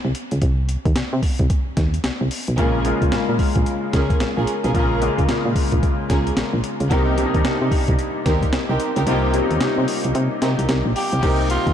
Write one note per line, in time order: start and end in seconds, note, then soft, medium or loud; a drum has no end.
0.05 0.13 C2 loud
0.15 closed hi-hat medium
0.31 0.40 C#2 medium
0.31 closed hi-hat medium
0.42 0.77 C2 loud
0.42 kick loud
0.42 closed hi-hat medium
0.69 closed hi-hat medium
0.85 0.94 D#2 medium
0.85 kick medium
0.85 closed hi-hat soft
0.96 1.03 C3 soft
0.96 snare loud
0.96 closed hi-hat medium
1.13 1.21 C3 loud
1.23 kick medium
1.23 open hi-hat medium
1.39 1.48 C2 loud
1.39 kick medium
1.39 closed hi-hat soft
1.50 kick loud
1.50 closed hi-hat medium
1.77 1.99 D#2 medium
1.77 kick medium
1.77 snare medium
1.77 closed hi-hat medium
1.94 closed hi-hat medium
2.04 2.11 C2 soft
2.04 snare loud
2.04 closed hi-hat medium
2.21 2.29 C2 medium
2.31 open hi-hat medium
2.48 2.56 B1 loud
2.48 closed hi-hat medium
2.58 2.93 A#1 loud
2.58 2.81 C#3 medium
2.58 2.81 G#3 medium
2.58 2.81 A#3 medium
2.58 2.83 C#4 loud
2.58 2.83 F4 medium
2.58 2.82 F4 medium
2.58 2.84 G#4 medium
2.58 2.84 A#4 loud
2.58 kick loud
2.58 closed hi-hat medium
2.85 3.72 C#3 medium
2.85 3.73 G#3 medium
2.85 3.73 A#3 medium
2.85 3.73 F4 medium
2.85 closed hi-hat medium
3.02 3.10 C#2 medium
3.02 kick medium
3.02 closed hi-hat soft
3.12 3.19 A#2 soft
3.12 snare loud
3.12 closed hi-hat medium
3.29 3.37 A#2 medium
3.39 kick loud
3.39 open hi-hat medium
3.56 3.64 A#1 medium
3.56 kick medium
3.56 closed hi-hat soft
3.66 closed hi-hat medium
3.93 4.15 C#2 medium
3.93 4.11 C#4 medium
3.93 4.11 F4 medium
3.93 4.11 G#4 medium
3.93 4.11 A#4 medium
3.93 kick medium
3.93 snare medium
3.93 closed hi-hat medium
4.10 kick medium
4.10 closed hi-hat medium
4.20 4.27 A#1 soft
4.20 snare medium
4.20 closed hi-hat medium
4.37 4.45 A#1 loud
4.37 4.48 C#4 medium
4.37 4.48 F4 medium
4.37 4.49 G#4 medium
4.37 4.49 A#4 medium
4.47 closed hi-hat medium
4.64 4.73 B1 loud
4.64 4.73 C#4 medium
4.64 4.73 F4 medium
4.64 4.73 G#4 medium
4.64 4.74 A#4 medium
4.64 closed hi-hat medium
4.74 5.10 A#1 medium
4.74 4.97 C#3 medium
4.74 4.98 G#3 medium
4.74 4.98 A#3 medium
4.74 5.00 C#4 loud
4.74 5.00 F4 medium
4.74 4.98 F4 medium
4.74 5.00 G#4 medium
4.74 5.00 A#4 loud
4.74 kick loud
4.74 closed hi-hat medium
5.02 5.89 C#3 medium
5.02 5.89 G#3 medium
5.02 5.89 A#3 medium
5.02 5.89 F4 loud
5.02 closed hi-hat medium
5.18 5.27 C#2 loud
5.18 kick medium
5.18 closed hi-hat soft
5.29 5.35 A#2 soft
5.29 snare loud
5.29 closed hi-hat medium
5.45 5.54 A#2 medium
5.55 kick medium
5.55 open hi-hat medium
5.72 5.81 A#1 medium
5.72 kick medium
5.72 closed hi-hat soft
5.83 kick medium
5.83 closed hi-hat medium
6.09 6.32 C#2 medium
6.09 6.27 C#4 medium
6.09 6.27 F4 medium
6.09 6.27 G#4 medium
6.09 6.27 A#4 medium
6.09 kick medium
6.09 snare medium
6.09 closed hi-hat medium
6.27 closed hi-hat medium
6.37 6.43 A#1 soft
6.37 snare loud
6.37 closed hi-hat medium
6.54 6.62 A#1 loud
6.64 closed hi-hat medium
6.80 6.89 C#2 loud
6.80 closed hi-hat medium
6.90 7.26 C2 loud
6.90 7.14 C3 medium
6.90 7.14 G3 medium
6.90 7.14 A#3 medium
6.90 7.16 C4 loud
6.90 7.16 D#4 medium
6.90 7.14 D#4 medium
6.90 7.16 G4 medium
6.90 7.16 A#4 loud
6.90 kick loud
6.90 closed hi-hat medium
7.18 8.05 C3 medium
7.18 8.05 G3 medium
7.18 8.05 A#3 medium
7.18 7.26 D4 medium
7.18 closed hi-hat medium
7.25 8.09 D#4 medium
7.34 7.43 D#2 loud
7.34 kick medium
7.34 closed hi-hat soft
7.45 7.51 C3 soft
7.45 snare loud
7.45 closed hi-hat medium
7.62 7.70 C3 medium
7.71 kick medium
7.71 open hi-hat medium
7.88 7.97 C2 loud
7.88 kick medium
7.88 closed hi-hat soft
7.99 closed hi-hat medium
8.25 8.48 D#2 medium
8.25 8.43 C4 medium
8.25 8.43 D#4 medium
8.25 8.43 G4 medium
8.25 8.43 A#4 medium
8.25 kick medium
8.25 snare medium
8.25 closed hi-hat medium
8.42 kick medium
8.42 closed hi-hat medium
8.53 8.59 C2 soft
8.53 snare loud
8.53 closed hi-hat medium
8.69 8.78 C2 medium
8.69 8.81 C4 medium
8.69 8.81 D#4 medium
8.69 8.81 G4 medium
8.69 8.81 A#4 medium
8.80 closed hi-hat medium
8.96 9.05 C#2 loud
8.96 9.05 C4 medium
8.96 9.05 D#4 medium
8.96 9.05 G4 medium
8.96 9.06 A#4 medium
8.96 closed hi-hat medium
9.06 9.42 C2 medium
9.06 9.30 C3 medium
9.06 9.30 G3 medium
9.06 9.30 A#3 medium
9.06 9.32 C4 loud
9.06 9.32 D#4 medium
9.06 9.30 F4 medium
9.06 9.32 G4 medium
9.06 9.32 A#4 loud
9.06 closed hi-hat medium
9.34 10.21 C3 medium
9.34 10.21 G3 medium
9.34 10.21 A#3 medium
9.34 9.42 C#4 medium
9.34 closed hi-hat medium
9.42 10.25 D#4 medium
9.51 9.59 D#2 medium
9.51 closed hi-hat soft
9.61 9.68 C3 soft
9.61 snare loud
9.61 closed hi-hat medium
9.78 9.86 C3 medium
9.88 open hi-hat medium
10.04 10.13 C2 medium
10.04 closed hi-hat soft
10.15 10.28 C3 loud
10.15 closed hi-hat medium
10.42 10.56 C3 loud
10.42 10.59 C4 medium
10.42 10.59 D#4 medium
10.42 10.59 G4 medium
10.42 10.59 A#4 medium
10.42 snare medium
10.42 closed hi-hat medium
10.59 10.67 C2 medium
10.59 closed hi-hat medium
10.69 10.83 C2 medium
10.69 snare medium
10.69 closed hi-hat medium
10.86 10.94 A#1 medium
10.96 11.47 G4 medium
10.96 open hi-hat medium
11.12 11.21 C2 loud
11.12 closed hi-hat medium
11.23 11.58 C2 loud
11.23 11.73 C3 medium
11.23 11.73 G3 medium
11.23 11.73 A#3 medium
11.23 11.48 C4 medium
11.23 11.48 D#4 medium
11.23 11.73 D#4 medium
11.23 11.48 G4 medium
11.23 11.48 A#4 loud
11.23 kick loud
11.23 closed hi-hat medium
11.23 crash medium
11.50 11.73 F4 medium
11.50 closed hi-hat medium
11.67 11.73 D#2 medium
11.67 kick medium
11.67 closed hi-hat soft